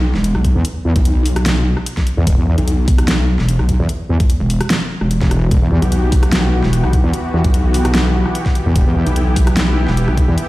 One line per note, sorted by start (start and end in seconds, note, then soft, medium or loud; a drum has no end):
0.00 0.13 B1 loud
0.15 0.33 E1 loud
0.15 snare soft
0.24 closed hi-hat medium
0.35 0.53 B1 loud
0.35 cross-stick medium
0.45 kick medium
0.45 closed hi-hat medium
0.55 0.63 E2 loud
0.65 closed hi-hat medium
0.85 0.94 E2 loud
0.96 1.75 B1 loud
0.96 kick loud
0.96 closed hi-hat medium
1.05 closed hi-hat medium
1.26 open hi-hat medium
1.36 cross-stick medium
1.36 closed hi-hat medium
1.46 snare loud
1.46 closed hi-hat medium
1.77 cross-stick medium
1.86 closed hi-hat medium
1.97 kick medium
1.97 snare soft
2.07 closed hi-hat medium
2.17 2.25 E2 loud
2.27 2.36 E1 loud
2.27 kick loud
2.27 closed hi-hat medium
2.38 2.46 E2 loud
2.47 2.56 E2 loud
2.58 3.37 B1 loud
2.58 closed hi-hat medium
2.68 closed hi-hat medium
2.88 kick loud
2.88 open hi-hat medium
2.98 cross-stick medium
2.98 closed hi-hat medium
3.08 snare loud
3.08 closed hi-hat medium
3.39 3.58 E1 loud
3.39 snare soft
3.49 closed hi-hat medium
3.59 3.78 B1 loud
3.59 cross-stick medium
3.69 kick medium
3.69 closed hi-hat medium
3.79 3.88 E2 loud
3.89 closed hi-hat medium
4.09 4.18 E2 loud
4.20 kick loud
4.20 closed hi-hat medium
4.30 closed hi-hat medium
4.40 4.59 E1 loud
4.50 open hi-hat medium
4.61 cross-stick medium
4.61 closed hi-hat medium
4.70 snare loud
4.70 closed hi-hat medium
5.01 5.20 E1 loud
5.01 cross-stick medium
5.11 closed hi-hat medium
5.21 5.50 E1 loud
5.21 kick medium
5.21 snare soft
5.31 cross-stick medium
5.31 closed hi-hat medium
5.51 5.60 E1 loud
5.51 10.49 E3 medium
5.51 10.49 B3 medium
5.51 8.72 F#4 medium
5.51 10.49 G4 medium
5.51 kick loud
5.51 closed hi-hat medium
5.62 5.70 E2 loud
5.72 5.81 E2 loud
5.82 6.62 B1 loud
5.82 closed hi-hat medium
5.92 closed hi-hat medium
6.12 kick loud
6.12 open hi-hat medium
6.23 cross-stick medium
6.23 closed hi-hat medium
6.32 snare loud
6.32 closed hi-hat medium
6.63 6.82 E1 loud
6.63 snare soft
6.73 closed hi-hat medium
6.84 7.02 B1 loud
6.84 cross-stick medium
6.93 kick medium
6.93 closed hi-hat medium
7.04 7.12 E2 loud
7.13 closed hi-hat medium
7.34 7.43 E2 medium
7.44 8.24 B1 loud
7.44 kick loud
7.44 closed hi-hat medium
7.54 closed hi-hat medium
7.74 open hi-hat medium
7.85 cross-stick medium
7.85 closed hi-hat medium
7.95 snare loud
7.95 closed hi-hat medium
8.25 cross-stick medium
8.35 closed hi-hat medium
8.46 kick medium
8.46 snare soft
8.55 closed hi-hat medium
8.66 8.74 E2 loud
8.76 8.85 E1 loud
8.76 10.49 E4 medium
8.76 kick loud
8.76 closed hi-hat medium
8.86 8.94 E2 loud
8.96 9.05 E2 loud
9.06 9.86 B1 loud
9.06 closed hi-hat medium
9.16 closed hi-hat medium
9.36 kick loud
9.36 open hi-hat medium
9.47 cross-stick medium
9.47 closed hi-hat medium
9.57 snare loud
9.57 closed hi-hat medium
9.88 10.06 E1 loud
9.88 snare soft
9.97 closed hi-hat medium
10.08 10.26 B1 loud
10.08 cross-stick medium
10.17 kick medium
10.17 closed hi-hat medium
10.28 10.36 E2 loud
10.38 closed hi-hat medium